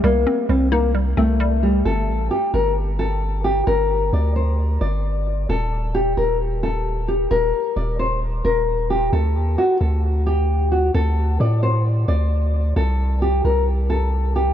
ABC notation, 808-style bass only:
X:1
M:4/4
L:1/8
Q:1/4=132
K:Gm
V:1 name="808-style bass" clef=bass
C,, z C,,3 C,,3 | G,,, A,,, z G,,,4- G,,, | G,,,2 D,,3 G,,,3 | E,,,3 E,,,4- E,,, |
E,,, z E,,,3 E,,,3 | D,, E,, z D,,4- D,, | D,,2 A,,3 D,,3 | C,,3 C,,4- C,, |]